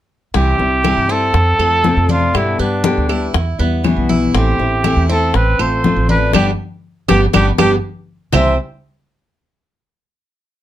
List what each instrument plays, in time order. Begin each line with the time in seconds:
0.34 upright bass C2, nylon-string guitar C3 E3 G3 C4 E4, cuban tres C4, trumpet G4, high bongo, high conga
0.58 upright bass C2, nylon-string guitar G3 C4 E4, high bongo, high conga
0.83 nylon-string guitar C3 E3 G3 C4 E4, cuban tres E4, high bongo, high conga, claves
0.97 upright bass G2
1.08 nylon-string guitar G3 C4 E4, cuban tres C4, trumpet A4, high bongo
1.33 upright bass F2, muted nylon-string guitar stroke, high bongo, high conga
1.59 upright bass F2, nylon-string guitar A3 C4 F4, cuban tres A4, high conga, claves
1.84 nylon-string guitar C3 F3 A3 C4 F4, high bongo, low bongo, high conga
1.97 upright bass F2
2.09 cuban tres D4, trumpet F4, high bongo, high conga
2.34 upright bass G2, nylon-string guitar B2 D3 G3 B3 G4, trumpet E4, high bongo, high conga, claves
2.59 upright bass G2, nylon-string guitar G3 B3 G4, cuban tres B3, trumpet D4, high bongo, high conga
2.84 nylon-string guitar B2 D3 G3 B3 G4, high bongo, high conga
2.97 upright bass D2
3.09 nylon-string guitar G3 B3 G4, cuban tres E4, high bongo, high conga, claves
3.34 upright bass E2, muted nylon-string guitar stroke, high bongo, high conga
3.59 upright bass E2, nylon-string guitar G3 B3 E4, cuban tres B3, high conga
3.84 nylon-string guitar B2 E3 G3 B3 E4, high bongo, low bongo, high conga, claves
3.96 upright bass B1
4.09 cuban tres E4, high bongo, high conga
4.34 upright bass A1, nylon-string guitar E3 A3 C4 E4, cuban tres C4, trumpet G4, high bongo
4.59 upright bass A1, nylon-string guitar A3 C4 E4, high bongo, high conga
4.84 nylon-string guitar E3 A3 C4 E4, cuban tres E4, high bongo, high conga, claves
4.96 upright bass E2
5.09 nylon-string guitar A3 C4 E4, cuban tres C4, trumpet A4, high bongo
5.34 upright bass A1, trumpet B4, muted nylon-string guitar stroke, high bongo, high conga
5.59 upright bass A1, nylon-string guitar A3 C4 F4, cuban tres A4, trumpet C5, high conga, claves
5.84 nylon-string guitar F3 A3 C4 F4, high bongo, low bongo, high conga
5.96 upright bass A1
6.09 cuban tres D4, trumpet B4, high bongo, high conga
6.33 upright bass G1, nylon-string guitar G3 B3 D4, cuban tres B3 D4 G4, trumpet G4, high bongo, high conga, claves
7.08 upright bass G1, nylon-string guitar G3 B3 D4, cuban tres B3 D4 G4, trumpet G4, high bongo, high conga, claves
7.33 upright bass G1, nylon-string guitar G3 B3 D4, cuban tres B3 D4 G4, trumpet G4, high bongo, high conga, claves
7.58 upright bass G1, nylon-string guitar G3 B3 D4, cuban tres B3 D4 G4, trumpet G4, high bongo, high conga, claves
8.33 upright bass C2, nylon-string guitar C3 E3 G3 C4 E4, cuban tres C4 G4 C5, trumpet E5, low bongo, low conga, claves